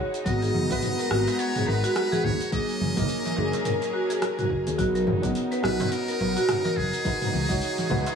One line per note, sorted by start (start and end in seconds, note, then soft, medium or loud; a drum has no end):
0.00 0.23 C#3 medium
0.00 0.23 G#3 medium
0.00 0.28 D#4 medium
0.00 2.48 D#4 medium
0.00 0.23 F#4 medium
0.00 0.26 F#4 medium
0.00 0.28 B4 medium
0.00 0.12 C#5 medium
0.00 0.28 C#5 loud
0.14 open hi-hat soft
0.14 darbuka tek soft
0.14 shaker medium
0.25 0.51 G#1 loud
0.25 2.50 G#3 medium
0.25 0.66 B3 medium
0.25 2.50 B3 medium
0.25 0.41 F#4 medium
0.25 0.67 F#4 medium
0.25 0.67 A#4 medium
0.25 1.41 D#5 loud
0.25 2.50 A#5 medium
0.25 kick loud
0.25 open hi-hat soft
0.25 shaker medium
0.42 0.97 G#4 medium
0.42 open hi-hat soft
0.42 shaker soft
0.54 0.68 F#1 medium
0.54 darbuka dum medium
0.70 0.81 G#1 medium
0.70 1.07 B3 medium
0.70 1.08 F#4 medium
0.70 1.08 B4 loud
0.70 kick loud
0.70 open hi-hat soft
0.70 shaker medium
0.82 mid tom medium
0.82 open hi-hat medium
0.82 shaker soft
0.99 1.10 A#4 medium
0.99 open hi-hat soft
0.99 darbuka ka soft
0.99 shaker soft
1.10 1.25 G#1 loud
1.10 1.35 B3 medium
1.10 1.26 F#4 medium
1.10 1.36 F#4 medium
1.10 1.36 A#4 medium
1.10 cross-stick medium
1.27 open hi-hat soft
1.27 darbuka ka medium
1.27 darbuka tek medium
1.27 shaker medium
1.39 1.69 C#5 loud
1.39 open hi-hat medium
1.39 shaker medium
1.56 1.66 G#4 medium
1.56 mid tom medium
1.56 open hi-hat soft
1.56 shaker soft
1.67 1.81 G#1 medium
1.67 1.83 A#4 medium
1.67 2.26 B4 loud
1.67 darbuka ka medium
1.84 2.11 F#4 loud
1.84 open hi-hat soft
1.84 shaker medium
1.96 cross-stick medium
1.96 open hi-hat medium
1.96 shaker medium
2.12 2.23 G#4 loud
2.12 open hi-hat soft
2.12 darbuka dum loud
2.12 shaker soft
2.24 2.38 D#2 medium
2.24 2.52 C#5 loud
2.24 kick medium
2.24 mid tom medium
2.24 darbuka tek soft
2.41 open hi-hat soft
2.41 shaker medium
2.52 4.76 F#3 medium
2.52 2.93 A#3 medium
2.52 4.76 C#4 medium
2.52 2.93 D#4 medium
2.52 4.76 G#4 medium
2.52 2.94 G#4 medium
2.52 4.76 A#4 medium
2.52 4.18 D#5 loud
2.52 kick loud
2.52 open hi-hat medium
2.52 shaker medium
2.69 open hi-hat soft
2.69 shaker soft
2.81 2.95 F#1 medium
2.81 darbuka dum medium
2.96 3.07 F#1 medium
2.96 3.34 A#3 medium
2.96 3.34 D#4 medium
2.96 3.35 A#4 loud
2.96 kick loud
2.96 mid tom medium
2.96 open hi-hat soft
2.96 shaker medium
3.09 open hi-hat medium
3.09 shaker medium
3.25 open hi-hat soft
3.25 darbuka ka medium
3.25 darbuka dum medium
3.25 shaker soft
3.36 3.51 F#1 loud
3.36 3.62 A#3 medium
3.36 3.62 D#4 medium
3.36 3.63 G#4 medium
3.36 darbuka tek medium
3.53 open hi-hat soft
3.53 darbuka ka medium
3.53 darbuka tek medium
3.53 shaker medium
3.65 3.93 A#4 medium
3.65 mid tom medium
3.65 open hi-hat medium
3.65 shaker medium
3.82 open hi-hat soft
3.82 darbuka tek soft
3.82 shaker soft
3.94 4.09 F#4 medium
4.10 4.21 G#4 medium
4.10 open hi-hat soft
4.10 darbuka tek soft
4.10 shaker medium
4.22 4.38 A#4 medium
4.22 cross-stick medium
4.22 open hi-hat medium
4.22 shaker medium
4.39 4.65 F#4 medium
4.39 mid tom medium
4.39 open hi-hat soft
4.39 shaker soft
4.50 4.64 F#1 medium
4.50 kick medium
4.67 4.77 D#2 medium
4.67 4.77 G#4 medium
4.67 open hi-hat soft
4.67 darbuka tek soft
4.67 shaker medium
4.78 5.03 B1 loud
4.78 7.03 B3 medium
4.78 5.19 C#4 medium
4.78 8.15 D#4 medium
4.78 5.20 D#4 medium
4.78 4.93 F#4 medium
4.78 5.20 A#4 medium
4.78 kick loud
4.78 open hi-hat medium
4.78 shaker medium
4.95 5.50 A#4 medium
4.95 open hi-hat soft
4.95 shaker soft
5.07 5.21 F#1 medium
5.07 mid tom medium
5.07 darbuka dum medium
5.22 5.33 B1 medium
5.22 5.61 B3 loud
5.22 5.60 C#4 medium
5.22 5.61 D#4 medium
5.22 kick loud
5.22 open hi-hat soft
5.22 shaker medium
5.35 open hi-hat medium
5.35 shaker soft
5.51 5.62 B4 medium
5.51 open hi-hat soft
5.51 darbuka ka medium
5.51 shaker soft
5.63 5.78 B1 loud
5.63 5.88 C#4 medium
5.63 5.88 D#4 medium
5.63 5.79 F#4 medium
5.63 5.89 A#4 medium
5.63 5.93 B4 loud
5.63 cross-stick medium
5.80 mid tom medium
5.80 open hi-hat soft
5.80 darbuka ka medium
5.80 darbuka tek medium
5.80 shaker medium
5.92 6.78 A#4 loud
5.92 open hi-hat medium
5.92 shaker medium
6.08 6.19 A#4 medium
6.08 open hi-hat soft
6.08 shaker soft
6.20 6.34 B1 medium
6.20 6.36 B4 medium
6.20 darbuka ka medium
6.37 6.63 F#4 loud
6.37 open hi-hat soft
6.37 shaker medium
6.49 cross-stick medium
6.49 mid tom medium
6.49 open hi-hat medium
6.49 shaker medium
6.65 6.76 A#4 loud
6.65 open hi-hat soft
6.65 darbuka dum medium
6.65 shaker soft
6.77 6.91 F#1 medium
6.77 8.15 G#4 loud
6.77 kick medium
6.77 darbuka tek soft
6.93 open hi-hat soft
6.93 shaker medium
7.04 8.15 C#3 medium
7.04 8.15 G#3 medium
7.04 7.45 D#4 medium
7.04 8.15 F#4 medium
7.04 7.46 F#4 medium
7.04 7.46 B4 medium
7.04 kick loud
7.04 open hi-hat medium
7.04 shaker medium
7.22 mid tom medium
7.22 open hi-hat soft
7.22 shaker soft
7.33 7.47 C#2 medium
7.33 darbuka dum medium
7.49 7.60 C#2 medium
7.49 7.87 D#4 medium
7.49 7.87 F#4 medium
7.49 7.88 C#5 loud
7.49 kick loud
7.49 open hi-hat soft
7.49 shaker medium
7.62 open hi-hat medium
7.62 shaker soft
7.78 open hi-hat soft
7.78 darbuka ka medium
7.78 darbuka dum medium
7.78 shaker soft
7.89 8.04 C#2 loud
7.89 8.14 D#4 medium
7.89 8.15 F#4 medium
7.89 8.15 B4 medium
7.89 mid tom medium
7.89 darbuka tek medium
8.06 open hi-hat soft
8.06 darbuka ka medium
8.06 darbuka tek medium
8.06 shaker medium